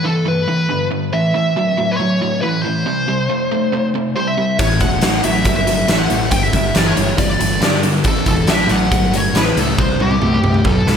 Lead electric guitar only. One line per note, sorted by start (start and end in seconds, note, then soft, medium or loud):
0.05 0.27 A4 medium
0.28 0.88 B4 medium
1.13 1.95 E5 medium
1.91 1.96 B4 medium
1.97 2.41 C#5 medium
2.41 2.62 B4 medium
2.62 3.89 C5 medium
4.16 4.27 C5 medium
4.28 4.57 E5 medium
4.59 4.79 C#5 medium
4.81 5.24 F#5 medium
5.24 5.54 E5 medium
5.56 5.87 E5 medium
5.88 5.99 E5 loud
5.99 6.30 F#5 medium
6.31 6.43 G5 medium
6.43 6.75 E5 loud
6.76 6.87 D5 medium
6.87 7.18 C#5 medium
7.19 7.80 D5 medium
8.07 8.27 A4 medium
8.28 8.48 A4 medium
8.50 8.71 E5 loud
8.71 9.16 F#5 loud
9.15 9.36 C#5 medium
9.37 9.58 B4 medium
9.59 9.80 A4 medium
9.80 10.00 C5 medium
10.02 10.67 G4 medium
10.67 10.97 A4 medium